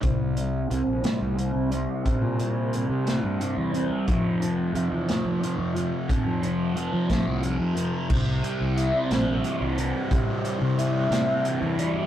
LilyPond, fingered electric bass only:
\new Staff \with { instrumentName = "Fingered electric bass" } { \clef bass \time 6/8 \key c \major \tempo 4. = 60 c,4 c,16 bes,,16 r16 c,8 c,8 r16 | r16 bes,4 c8 g,8 e,8 r16 | f,4 f,16 e,16 r16 f,8 f,8 r16 | r16 f,4 f8 c,8 f,8 r16 |
c,8 r16 c,8 r16 bes,,8 r16 c,8 r16 | c8. c8. c8. e,8 r16 | }